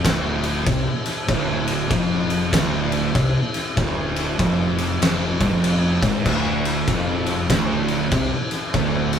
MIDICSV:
0, 0, Header, 1, 4, 480
1, 0, Start_track
1, 0, Key_signature, -1, "minor"
1, 0, Tempo, 620476
1, 998, Time_signature, 4, 2, 24, 8
1, 7109, End_track
2, 0, Start_track
2, 0, Title_t, "Distorted electric guitar"
2, 0, Program_c, 0, 30
2, 32, Note_on_c, 0, 38, 113
2, 506, Note_off_c, 0, 38, 0
2, 509, Note_on_c, 0, 48, 115
2, 656, Note_off_c, 0, 48, 0
2, 988, Note_on_c, 0, 38, 123
2, 1467, Note_off_c, 0, 38, 0
2, 1473, Note_on_c, 0, 41, 122
2, 1946, Note_off_c, 0, 41, 0
2, 1949, Note_on_c, 0, 38, 104
2, 2427, Note_off_c, 0, 38, 0
2, 2433, Note_on_c, 0, 48, 103
2, 2576, Note_off_c, 0, 48, 0
2, 2913, Note_on_c, 0, 38, 116
2, 3389, Note_off_c, 0, 38, 0
2, 3398, Note_on_c, 0, 41, 111
2, 3872, Note_off_c, 0, 41, 0
2, 3882, Note_on_c, 0, 41, 103
2, 4172, Note_off_c, 0, 41, 0
2, 4179, Note_on_c, 0, 43, 109
2, 4263, Note_off_c, 0, 43, 0
2, 4271, Note_on_c, 0, 41, 108
2, 4652, Note_off_c, 0, 41, 0
2, 4665, Note_on_c, 0, 44, 105
2, 4834, Note_off_c, 0, 44, 0
2, 4837, Note_on_c, 0, 38, 115
2, 5313, Note_off_c, 0, 38, 0
2, 5322, Note_on_c, 0, 41, 111
2, 5796, Note_off_c, 0, 41, 0
2, 5800, Note_on_c, 0, 38, 106
2, 6276, Note_off_c, 0, 38, 0
2, 6281, Note_on_c, 0, 48, 120
2, 6423, Note_off_c, 0, 48, 0
2, 6766, Note_on_c, 0, 38, 107
2, 7109, Note_off_c, 0, 38, 0
2, 7109, End_track
3, 0, Start_track
3, 0, Title_t, "Fingered electric bass"
3, 0, Program_c, 1, 33
3, 36, Note_on_c, 1, 26, 100
3, 486, Note_off_c, 1, 26, 0
3, 515, Note_on_c, 1, 36, 103
3, 657, Note_off_c, 1, 36, 0
3, 990, Note_on_c, 1, 26, 104
3, 1442, Note_off_c, 1, 26, 0
3, 1473, Note_on_c, 1, 29, 96
3, 1924, Note_off_c, 1, 29, 0
3, 1958, Note_on_c, 1, 26, 103
3, 2406, Note_off_c, 1, 26, 0
3, 2434, Note_on_c, 1, 36, 100
3, 2575, Note_off_c, 1, 36, 0
3, 2916, Note_on_c, 1, 26, 99
3, 3365, Note_off_c, 1, 26, 0
3, 3397, Note_on_c, 1, 29, 109
3, 3846, Note_off_c, 1, 29, 0
3, 3878, Note_on_c, 1, 29, 108
3, 4158, Note_off_c, 1, 29, 0
3, 4183, Note_on_c, 1, 31, 99
3, 4264, Note_off_c, 1, 31, 0
3, 4272, Note_on_c, 1, 29, 104
3, 4634, Note_off_c, 1, 29, 0
3, 4658, Note_on_c, 1, 32, 98
3, 4825, Note_off_c, 1, 32, 0
3, 4839, Note_on_c, 1, 26, 102
3, 5289, Note_off_c, 1, 26, 0
3, 5318, Note_on_c, 1, 29, 99
3, 5769, Note_off_c, 1, 29, 0
3, 5801, Note_on_c, 1, 26, 98
3, 6251, Note_off_c, 1, 26, 0
3, 6278, Note_on_c, 1, 36, 104
3, 6420, Note_off_c, 1, 36, 0
3, 6760, Note_on_c, 1, 26, 101
3, 7109, Note_off_c, 1, 26, 0
3, 7109, End_track
4, 0, Start_track
4, 0, Title_t, "Drums"
4, 36, Note_on_c, 9, 36, 115
4, 37, Note_on_c, 9, 51, 116
4, 43, Note_on_c, 9, 38, 121
4, 113, Note_off_c, 9, 36, 0
4, 115, Note_off_c, 9, 51, 0
4, 121, Note_off_c, 9, 38, 0
4, 337, Note_on_c, 9, 51, 88
4, 414, Note_off_c, 9, 51, 0
4, 513, Note_on_c, 9, 51, 118
4, 515, Note_on_c, 9, 36, 122
4, 590, Note_off_c, 9, 51, 0
4, 592, Note_off_c, 9, 36, 0
4, 817, Note_on_c, 9, 51, 83
4, 823, Note_on_c, 9, 38, 32
4, 894, Note_off_c, 9, 51, 0
4, 900, Note_off_c, 9, 38, 0
4, 994, Note_on_c, 9, 36, 111
4, 996, Note_on_c, 9, 51, 117
4, 1072, Note_off_c, 9, 36, 0
4, 1074, Note_off_c, 9, 51, 0
4, 1296, Note_on_c, 9, 51, 90
4, 1374, Note_off_c, 9, 51, 0
4, 1475, Note_on_c, 9, 36, 112
4, 1475, Note_on_c, 9, 51, 115
4, 1552, Note_off_c, 9, 36, 0
4, 1552, Note_off_c, 9, 51, 0
4, 1780, Note_on_c, 9, 51, 81
4, 1857, Note_off_c, 9, 51, 0
4, 1957, Note_on_c, 9, 36, 124
4, 1958, Note_on_c, 9, 51, 118
4, 1964, Note_on_c, 9, 38, 126
4, 2034, Note_off_c, 9, 36, 0
4, 2035, Note_off_c, 9, 51, 0
4, 2041, Note_off_c, 9, 38, 0
4, 2259, Note_on_c, 9, 51, 83
4, 2336, Note_off_c, 9, 51, 0
4, 2438, Note_on_c, 9, 36, 119
4, 2440, Note_on_c, 9, 51, 109
4, 2515, Note_off_c, 9, 36, 0
4, 2517, Note_off_c, 9, 51, 0
4, 2739, Note_on_c, 9, 51, 81
4, 2745, Note_on_c, 9, 38, 33
4, 2816, Note_off_c, 9, 51, 0
4, 2823, Note_off_c, 9, 38, 0
4, 2918, Note_on_c, 9, 36, 103
4, 2918, Note_on_c, 9, 51, 99
4, 2995, Note_off_c, 9, 36, 0
4, 2995, Note_off_c, 9, 51, 0
4, 3220, Note_on_c, 9, 51, 82
4, 3298, Note_off_c, 9, 51, 0
4, 3398, Note_on_c, 9, 36, 105
4, 3399, Note_on_c, 9, 51, 102
4, 3476, Note_off_c, 9, 36, 0
4, 3477, Note_off_c, 9, 51, 0
4, 3701, Note_on_c, 9, 51, 83
4, 3778, Note_off_c, 9, 51, 0
4, 3882, Note_on_c, 9, 51, 119
4, 3889, Note_on_c, 9, 38, 123
4, 3960, Note_off_c, 9, 51, 0
4, 3966, Note_off_c, 9, 38, 0
4, 4182, Note_on_c, 9, 36, 109
4, 4185, Note_on_c, 9, 51, 83
4, 4259, Note_off_c, 9, 36, 0
4, 4262, Note_off_c, 9, 51, 0
4, 4362, Note_on_c, 9, 51, 122
4, 4439, Note_off_c, 9, 51, 0
4, 4661, Note_on_c, 9, 36, 116
4, 4663, Note_on_c, 9, 51, 84
4, 4669, Note_on_c, 9, 38, 35
4, 4739, Note_off_c, 9, 36, 0
4, 4740, Note_off_c, 9, 51, 0
4, 4747, Note_off_c, 9, 38, 0
4, 4841, Note_on_c, 9, 36, 110
4, 4843, Note_on_c, 9, 49, 108
4, 4918, Note_off_c, 9, 36, 0
4, 4921, Note_off_c, 9, 49, 0
4, 5147, Note_on_c, 9, 51, 92
4, 5224, Note_off_c, 9, 51, 0
4, 5320, Note_on_c, 9, 36, 109
4, 5322, Note_on_c, 9, 51, 109
4, 5398, Note_off_c, 9, 36, 0
4, 5399, Note_off_c, 9, 51, 0
4, 5620, Note_on_c, 9, 51, 80
4, 5697, Note_off_c, 9, 51, 0
4, 5799, Note_on_c, 9, 51, 117
4, 5800, Note_on_c, 9, 36, 113
4, 5805, Note_on_c, 9, 38, 124
4, 5876, Note_off_c, 9, 51, 0
4, 5878, Note_off_c, 9, 36, 0
4, 5882, Note_off_c, 9, 38, 0
4, 6099, Note_on_c, 9, 51, 73
4, 6176, Note_off_c, 9, 51, 0
4, 6277, Note_on_c, 9, 51, 118
4, 6280, Note_on_c, 9, 36, 114
4, 6355, Note_off_c, 9, 51, 0
4, 6357, Note_off_c, 9, 36, 0
4, 6583, Note_on_c, 9, 51, 77
4, 6589, Note_on_c, 9, 38, 34
4, 6660, Note_off_c, 9, 51, 0
4, 6666, Note_off_c, 9, 38, 0
4, 6760, Note_on_c, 9, 51, 104
4, 6762, Note_on_c, 9, 36, 101
4, 6837, Note_off_c, 9, 51, 0
4, 6839, Note_off_c, 9, 36, 0
4, 7061, Note_on_c, 9, 51, 83
4, 7109, Note_off_c, 9, 51, 0
4, 7109, End_track
0, 0, End_of_file